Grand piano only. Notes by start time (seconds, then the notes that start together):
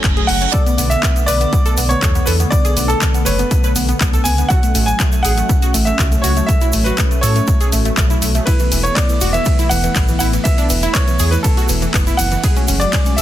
0.27 F#5
0.52 D5
0.90 E5
1.26 D5
1.89 C#5
2.26 B4
2.50 D5
2.88 A4
3.25 B4
4.24 G#5
4.49 F#5
4.86 G#5
5.23 F#5
5.85 E5
6.22 C#5
6.46 E5
6.84 B4
7.21 C#5
8.46 B4
8.83 C#5
8.95 D5
9.33 E5
9.69 F#5
10.19 F#5
10.44 E5
10.93 C#5
11.31 B4
11.43 A4
12.17 F#5
12.80 D5
13.16 E5